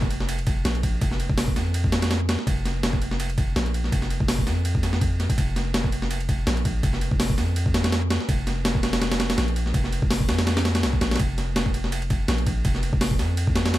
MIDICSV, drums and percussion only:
0, 0, Header, 1, 2, 480
1, 0, Start_track
1, 0, Tempo, 363636
1, 1340, Time_signature, 4, 2, 24, 8
1, 18195, End_track
2, 0, Start_track
2, 0, Title_t, "Drums"
2, 30, Note_on_c, 9, 36, 99
2, 139, Note_on_c, 9, 51, 68
2, 162, Note_off_c, 9, 36, 0
2, 271, Note_off_c, 9, 51, 0
2, 271, Note_on_c, 9, 38, 51
2, 378, Note_on_c, 9, 51, 94
2, 403, Note_off_c, 9, 38, 0
2, 510, Note_off_c, 9, 51, 0
2, 510, Note_on_c, 9, 51, 45
2, 615, Note_off_c, 9, 51, 0
2, 615, Note_on_c, 9, 51, 73
2, 619, Note_on_c, 9, 36, 98
2, 747, Note_off_c, 9, 51, 0
2, 751, Note_off_c, 9, 36, 0
2, 859, Note_on_c, 9, 38, 114
2, 859, Note_on_c, 9, 51, 91
2, 990, Note_off_c, 9, 51, 0
2, 990, Note_on_c, 9, 51, 44
2, 991, Note_off_c, 9, 38, 0
2, 1100, Note_on_c, 9, 36, 101
2, 1101, Note_off_c, 9, 51, 0
2, 1101, Note_on_c, 9, 51, 86
2, 1232, Note_off_c, 9, 36, 0
2, 1233, Note_off_c, 9, 51, 0
2, 1339, Note_on_c, 9, 51, 85
2, 1340, Note_on_c, 9, 36, 114
2, 1471, Note_off_c, 9, 51, 0
2, 1471, Note_on_c, 9, 38, 41
2, 1472, Note_off_c, 9, 36, 0
2, 1580, Note_on_c, 9, 51, 73
2, 1603, Note_off_c, 9, 38, 0
2, 1710, Note_on_c, 9, 36, 101
2, 1712, Note_off_c, 9, 51, 0
2, 1817, Note_on_c, 9, 38, 118
2, 1817, Note_on_c, 9, 46, 84
2, 1842, Note_off_c, 9, 36, 0
2, 1949, Note_off_c, 9, 38, 0
2, 1949, Note_off_c, 9, 46, 0
2, 1951, Note_on_c, 9, 36, 97
2, 2062, Note_on_c, 9, 38, 53
2, 2062, Note_on_c, 9, 51, 69
2, 2083, Note_off_c, 9, 36, 0
2, 2194, Note_off_c, 9, 38, 0
2, 2194, Note_off_c, 9, 51, 0
2, 2300, Note_on_c, 9, 51, 95
2, 2430, Note_on_c, 9, 36, 103
2, 2432, Note_off_c, 9, 51, 0
2, 2539, Note_on_c, 9, 38, 113
2, 2539, Note_on_c, 9, 51, 82
2, 2562, Note_off_c, 9, 36, 0
2, 2671, Note_off_c, 9, 38, 0
2, 2671, Note_off_c, 9, 51, 0
2, 2671, Note_on_c, 9, 38, 105
2, 2671, Note_on_c, 9, 51, 84
2, 2781, Note_off_c, 9, 38, 0
2, 2781, Note_off_c, 9, 51, 0
2, 2781, Note_on_c, 9, 38, 104
2, 2781, Note_on_c, 9, 51, 78
2, 2913, Note_off_c, 9, 38, 0
2, 2913, Note_off_c, 9, 51, 0
2, 3021, Note_on_c, 9, 38, 110
2, 3021, Note_on_c, 9, 51, 81
2, 3152, Note_off_c, 9, 38, 0
2, 3152, Note_on_c, 9, 38, 50
2, 3153, Note_off_c, 9, 51, 0
2, 3260, Note_on_c, 9, 36, 107
2, 3262, Note_on_c, 9, 51, 90
2, 3284, Note_off_c, 9, 38, 0
2, 3392, Note_off_c, 9, 36, 0
2, 3394, Note_off_c, 9, 51, 0
2, 3504, Note_on_c, 9, 38, 44
2, 3504, Note_on_c, 9, 51, 69
2, 3636, Note_off_c, 9, 38, 0
2, 3636, Note_off_c, 9, 51, 0
2, 3740, Note_on_c, 9, 38, 119
2, 3740, Note_on_c, 9, 51, 89
2, 3870, Note_on_c, 9, 36, 99
2, 3872, Note_off_c, 9, 38, 0
2, 3872, Note_off_c, 9, 51, 0
2, 3981, Note_on_c, 9, 51, 65
2, 4002, Note_off_c, 9, 36, 0
2, 4111, Note_on_c, 9, 38, 51
2, 4113, Note_off_c, 9, 51, 0
2, 4220, Note_on_c, 9, 51, 95
2, 4243, Note_off_c, 9, 38, 0
2, 4351, Note_off_c, 9, 51, 0
2, 4351, Note_on_c, 9, 51, 47
2, 4458, Note_off_c, 9, 51, 0
2, 4458, Note_on_c, 9, 36, 99
2, 4458, Note_on_c, 9, 51, 70
2, 4590, Note_off_c, 9, 36, 0
2, 4590, Note_off_c, 9, 51, 0
2, 4701, Note_on_c, 9, 38, 119
2, 4701, Note_on_c, 9, 51, 87
2, 4832, Note_off_c, 9, 51, 0
2, 4832, Note_on_c, 9, 51, 45
2, 4833, Note_off_c, 9, 38, 0
2, 4942, Note_off_c, 9, 51, 0
2, 4942, Note_on_c, 9, 51, 68
2, 5072, Note_on_c, 9, 38, 40
2, 5074, Note_off_c, 9, 51, 0
2, 5178, Note_on_c, 9, 36, 105
2, 5180, Note_on_c, 9, 51, 86
2, 5204, Note_off_c, 9, 38, 0
2, 5310, Note_off_c, 9, 36, 0
2, 5310, Note_on_c, 9, 38, 43
2, 5312, Note_off_c, 9, 51, 0
2, 5418, Note_on_c, 9, 51, 73
2, 5442, Note_off_c, 9, 38, 0
2, 5549, Note_on_c, 9, 36, 97
2, 5550, Note_off_c, 9, 51, 0
2, 5655, Note_on_c, 9, 38, 119
2, 5655, Note_on_c, 9, 46, 88
2, 5681, Note_off_c, 9, 36, 0
2, 5787, Note_off_c, 9, 38, 0
2, 5787, Note_off_c, 9, 46, 0
2, 5788, Note_on_c, 9, 36, 99
2, 5898, Note_on_c, 9, 38, 53
2, 5898, Note_on_c, 9, 51, 68
2, 5920, Note_off_c, 9, 36, 0
2, 6030, Note_off_c, 9, 38, 0
2, 6030, Note_off_c, 9, 51, 0
2, 6137, Note_on_c, 9, 51, 92
2, 6268, Note_on_c, 9, 36, 102
2, 6269, Note_off_c, 9, 51, 0
2, 6377, Note_on_c, 9, 38, 50
2, 6377, Note_on_c, 9, 51, 74
2, 6400, Note_off_c, 9, 36, 0
2, 6507, Note_off_c, 9, 38, 0
2, 6507, Note_on_c, 9, 38, 58
2, 6509, Note_off_c, 9, 51, 0
2, 6618, Note_on_c, 9, 36, 104
2, 6619, Note_on_c, 9, 51, 82
2, 6639, Note_off_c, 9, 38, 0
2, 6750, Note_off_c, 9, 36, 0
2, 6751, Note_off_c, 9, 51, 0
2, 6861, Note_on_c, 9, 38, 42
2, 6861, Note_on_c, 9, 51, 60
2, 6991, Note_on_c, 9, 36, 99
2, 6993, Note_off_c, 9, 38, 0
2, 6993, Note_off_c, 9, 51, 0
2, 6993, Note_on_c, 9, 51, 80
2, 7100, Note_off_c, 9, 36, 0
2, 7100, Note_on_c, 9, 36, 106
2, 7101, Note_off_c, 9, 51, 0
2, 7101, Note_on_c, 9, 51, 84
2, 7232, Note_off_c, 9, 36, 0
2, 7233, Note_off_c, 9, 51, 0
2, 7342, Note_on_c, 9, 38, 46
2, 7342, Note_on_c, 9, 51, 67
2, 7474, Note_off_c, 9, 38, 0
2, 7474, Note_off_c, 9, 51, 0
2, 7580, Note_on_c, 9, 38, 121
2, 7580, Note_on_c, 9, 51, 91
2, 7711, Note_on_c, 9, 36, 96
2, 7712, Note_off_c, 9, 38, 0
2, 7712, Note_off_c, 9, 51, 0
2, 7820, Note_on_c, 9, 51, 71
2, 7843, Note_off_c, 9, 36, 0
2, 7950, Note_on_c, 9, 38, 52
2, 7952, Note_off_c, 9, 51, 0
2, 8060, Note_on_c, 9, 51, 90
2, 8082, Note_off_c, 9, 38, 0
2, 8191, Note_off_c, 9, 51, 0
2, 8191, Note_on_c, 9, 51, 46
2, 8300, Note_on_c, 9, 36, 93
2, 8301, Note_off_c, 9, 51, 0
2, 8301, Note_on_c, 9, 51, 72
2, 8432, Note_off_c, 9, 36, 0
2, 8433, Note_off_c, 9, 51, 0
2, 8539, Note_on_c, 9, 38, 119
2, 8539, Note_on_c, 9, 51, 92
2, 8671, Note_off_c, 9, 38, 0
2, 8671, Note_off_c, 9, 51, 0
2, 8672, Note_on_c, 9, 51, 43
2, 8780, Note_off_c, 9, 51, 0
2, 8780, Note_on_c, 9, 36, 98
2, 8780, Note_on_c, 9, 51, 81
2, 8912, Note_off_c, 9, 36, 0
2, 8912, Note_off_c, 9, 51, 0
2, 9020, Note_on_c, 9, 36, 108
2, 9020, Note_on_c, 9, 51, 84
2, 9150, Note_on_c, 9, 38, 41
2, 9152, Note_off_c, 9, 36, 0
2, 9152, Note_off_c, 9, 51, 0
2, 9258, Note_on_c, 9, 51, 70
2, 9282, Note_off_c, 9, 38, 0
2, 9390, Note_off_c, 9, 51, 0
2, 9391, Note_on_c, 9, 36, 99
2, 9500, Note_on_c, 9, 38, 119
2, 9500, Note_on_c, 9, 46, 88
2, 9523, Note_off_c, 9, 36, 0
2, 9631, Note_on_c, 9, 36, 99
2, 9632, Note_off_c, 9, 38, 0
2, 9632, Note_off_c, 9, 46, 0
2, 9740, Note_on_c, 9, 38, 51
2, 9740, Note_on_c, 9, 51, 64
2, 9763, Note_off_c, 9, 36, 0
2, 9872, Note_off_c, 9, 38, 0
2, 9872, Note_off_c, 9, 51, 0
2, 9981, Note_on_c, 9, 51, 92
2, 10110, Note_on_c, 9, 36, 98
2, 10113, Note_off_c, 9, 51, 0
2, 10222, Note_on_c, 9, 38, 108
2, 10222, Note_on_c, 9, 51, 82
2, 10242, Note_off_c, 9, 36, 0
2, 10352, Note_off_c, 9, 38, 0
2, 10352, Note_off_c, 9, 51, 0
2, 10352, Note_on_c, 9, 38, 103
2, 10352, Note_on_c, 9, 51, 81
2, 10461, Note_off_c, 9, 38, 0
2, 10461, Note_off_c, 9, 51, 0
2, 10461, Note_on_c, 9, 38, 109
2, 10461, Note_on_c, 9, 51, 80
2, 10593, Note_off_c, 9, 38, 0
2, 10593, Note_off_c, 9, 51, 0
2, 10698, Note_on_c, 9, 38, 109
2, 10698, Note_on_c, 9, 51, 79
2, 10830, Note_off_c, 9, 38, 0
2, 10830, Note_off_c, 9, 51, 0
2, 10831, Note_on_c, 9, 38, 53
2, 10939, Note_on_c, 9, 36, 108
2, 10939, Note_on_c, 9, 51, 90
2, 10963, Note_off_c, 9, 38, 0
2, 11071, Note_off_c, 9, 36, 0
2, 11071, Note_off_c, 9, 51, 0
2, 11180, Note_on_c, 9, 38, 46
2, 11180, Note_on_c, 9, 51, 69
2, 11312, Note_off_c, 9, 38, 0
2, 11312, Note_off_c, 9, 51, 0
2, 11418, Note_on_c, 9, 38, 121
2, 11418, Note_on_c, 9, 51, 93
2, 11549, Note_on_c, 9, 36, 96
2, 11550, Note_off_c, 9, 38, 0
2, 11550, Note_off_c, 9, 51, 0
2, 11657, Note_on_c, 9, 38, 97
2, 11657, Note_on_c, 9, 51, 75
2, 11681, Note_off_c, 9, 36, 0
2, 11789, Note_off_c, 9, 38, 0
2, 11789, Note_off_c, 9, 51, 0
2, 11789, Note_on_c, 9, 38, 108
2, 11789, Note_on_c, 9, 51, 80
2, 11900, Note_off_c, 9, 38, 0
2, 11900, Note_off_c, 9, 51, 0
2, 11900, Note_on_c, 9, 38, 108
2, 11900, Note_on_c, 9, 51, 84
2, 12032, Note_off_c, 9, 38, 0
2, 12032, Note_off_c, 9, 51, 0
2, 12033, Note_on_c, 9, 38, 112
2, 12033, Note_on_c, 9, 51, 85
2, 12141, Note_off_c, 9, 38, 0
2, 12141, Note_off_c, 9, 51, 0
2, 12141, Note_on_c, 9, 38, 109
2, 12141, Note_on_c, 9, 51, 81
2, 12273, Note_off_c, 9, 38, 0
2, 12273, Note_off_c, 9, 51, 0
2, 12273, Note_on_c, 9, 38, 107
2, 12273, Note_on_c, 9, 51, 84
2, 12380, Note_off_c, 9, 38, 0
2, 12380, Note_off_c, 9, 51, 0
2, 12380, Note_on_c, 9, 38, 115
2, 12380, Note_on_c, 9, 51, 88
2, 12512, Note_off_c, 9, 38, 0
2, 12512, Note_off_c, 9, 51, 0
2, 12514, Note_on_c, 9, 51, 43
2, 12621, Note_off_c, 9, 51, 0
2, 12621, Note_on_c, 9, 51, 74
2, 12751, Note_on_c, 9, 38, 41
2, 12753, Note_off_c, 9, 51, 0
2, 12859, Note_on_c, 9, 36, 112
2, 12859, Note_on_c, 9, 51, 83
2, 12883, Note_off_c, 9, 38, 0
2, 12991, Note_off_c, 9, 36, 0
2, 12991, Note_off_c, 9, 51, 0
2, 12991, Note_on_c, 9, 38, 40
2, 13101, Note_on_c, 9, 51, 74
2, 13123, Note_off_c, 9, 38, 0
2, 13231, Note_on_c, 9, 36, 106
2, 13233, Note_off_c, 9, 51, 0
2, 13339, Note_on_c, 9, 38, 121
2, 13339, Note_on_c, 9, 46, 87
2, 13363, Note_off_c, 9, 36, 0
2, 13470, Note_on_c, 9, 36, 99
2, 13471, Note_off_c, 9, 38, 0
2, 13471, Note_off_c, 9, 46, 0
2, 13578, Note_on_c, 9, 38, 105
2, 13578, Note_on_c, 9, 51, 79
2, 13602, Note_off_c, 9, 36, 0
2, 13709, Note_off_c, 9, 38, 0
2, 13709, Note_off_c, 9, 51, 0
2, 13709, Note_on_c, 9, 38, 105
2, 13709, Note_on_c, 9, 51, 82
2, 13819, Note_off_c, 9, 38, 0
2, 13819, Note_off_c, 9, 51, 0
2, 13819, Note_on_c, 9, 38, 109
2, 13819, Note_on_c, 9, 51, 82
2, 13950, Note_off_c, 9, 38, 0
2, 13950, Note_off_c, 9, 51, 0
2, 13950, Note_on_c, 9, 38, 114
2, 13950, Note_on_c, 9, 51, 86
2, 14060, Note_off_c, 9, 38, 0
2, 14060, Note_off_c, 9, 51, 0
2, 14060, Note_on_c, 9, 38, 106
2, 14060, Note_on_c, 9, 51, 78
2, 14189, Note_off_c, 9, 38, 0
2, 14189, Note_off_c, 9, 51, 0
2, 14189, Note_on_c, 9, 38, 106
2, 14189, Note_on_c, 9, 51, 82
2, 14300, Note_off_c, 9, 38, 0
2, 14300, Note_off_c, 9, 51, 0
2, 14300, Note_on_c, 9, 38, 106
2, 14300, Note_on_c, 9, 51, 81
2, 14430, Note_on_c, 9, 36, 86
2, 14432, Note_off_c, 9, 38, 0
2, 14432, Note_off_c, 9, 51, 0
2, 14537, Note_on_c, 9, 38, 109
2, 14537, Note_on_c, 9, 51, 82
2, 14562, Note_off_c, 9, 36, 0
2, 14669, Note_off_c, 9, 38, 0
2, 14669, Note_off_c, 9, 51, 0
2, 14671, Note_on_c, 9, 38, 89
2, 14671, Note_on_c, 9, 51, 67
2, 14725, Note_off_c, 9, 38, 0
2, 14725, Note_off_c, 9, 51, 0
2, 14725, Note_on_c, 9, 38, 90
2, 14725, Note_on_c, 9, 51, 69
2, 14778, Note_off_c, 9, 51, 0
2, 14778, Note_on_c, 9, 51, 88
2, 14779, Note_on_c, 9, 36, 110
2, 14857, Note_off_c, 9, 38, 0
2, 14910, Note_off_c, 9, 51, 0
2, 14911, Note_off_c, 9, 36, 0
2, 15020, Note_on_c, 9, 38, 43
2, 15020, Note_on_c, 9, 51, 70
2, 15152, Note_off_c, 9, 38, 0
2, 15152, Note_off_c, 9, 51, 0
2, 15259, Note_on_c, 9, 38, 121
2, 15259, Note_on_c, 9, 51, 90
2, 15389, Note_on_c, 9, 36, 100
2, 15391, Note_off_c, 9, 38, 0
2, 15391, Note_off_c, 9, 51, 0
2, 15499, Note_on_c, 9, 51, 68
2, 15521, Note_off_c, 9, 36, 0
2, 15630, Note_on_c, 9, 38, 51
2, 15631, Note_off_c, 9, 51, 0
2, 15737, Note_on_c, 9, 51, 92
2, 15762, Note_off_c, 9, 38, 0
2, 15868, Note_off_c, 9, 51, 0
2, 15868, Note_on_c, 9, 51, 44
2, 15975, Note_off_c, 9, 51, 0
2, 15975, Note_on_c, 9, 51, 69
2, 15977, Note_on_c, 9, 36, 99
2, 16107, Note_off_c, 9, 51, 0
2, 16109, Note_off_c, 9, 36, 0
2, 16214, Note_on_c, 9, 38, 113
2, 16214, Note_on_c, 9, 51, 89
2, 16345, Note_off_c, 9, 51, 0
2, 16345, Note_on_c, 9, 51, 44
2, 16346, Note_off_c, 9, 38, 0
2, 16454, Note_off_c, 9, 51, 0
2, 16454, Note_on_c, 9, 51, 79
2, 16456, Note_on_c, 9, 36, 103
2, 16586, Note_off_c, 9, 51, 0
2, 16588, Note_off_c, 9, 36, 0
2, 16694, Note_on_c, 9, 51, 86
2, 16696, Note_on_c, 9, 36, 108
2, 16826, Note_off_c, 9, 51, 0
2, 16827, Note_on_c, 9, 38, 42
2, 16828, Note_off_c, 9, 36, 0
2, 16934, Note_on_c, 9, 51, 70
2, 16959, Note_off_c, 9, 38, 0
2, 17066, Note_off_c, 9, 51, 0
2, 17066, Note_on_c, 9, 36, 100
2, 17174, Note_on_c, 9, 38, 120
2, 17174, Note_on_c, 9, 46, 83
2, 17198, Note_off_c, 9, 36, 0
2, 17306, Note_off_c, 9, 38, 0
2, 17306, Note_off_c, 9, 46, 0
2, 17306, Note_on_c, 9, 36, 100
2, 17414, Note_on_c, 9, 38, 54
2, 17414, Note_on_c, 9, 51, 68
2, 17438, Note_off_c, 9, 36, 0
2, 17546, Note_off_c, 9, 38, 0
2, 17546, Note_off_c, 9, 51, 0
2, 17652, Note_on_c, 9, 51, 92
2, 17784, Note_off_c, 9, 51, 0
2, 17785, Note_on_c, 9, 36, 101
2, 17893, Note_on_c, 9, 38, 112
2, 17893, Note_on_c, 9, 51, 80
2, 17917, Note_off_c, 9, 36, 0
2, 18025, Note_off_c, 9, 38, 0
2, 18025, Note_off_c, 9, 51, 0
2, 18026, Note_on_c, 9, 38, 112
2, 18026, Note_on_c, 9, 51, 81
2, 18135, Note_off_c, 9, 38, 0
2, 18135, Note_off_c, 9, 51, 0
2, 18135, Note_on_c, 9, 38, 108
2, 18135, Note_on_c, 9, 51, 83
2, 18195, Note_off_c, 9, 38, 0
2, 18195, Note_off_c, 9, 51, 0
2, 18195, End_track
0, 0, End_of_file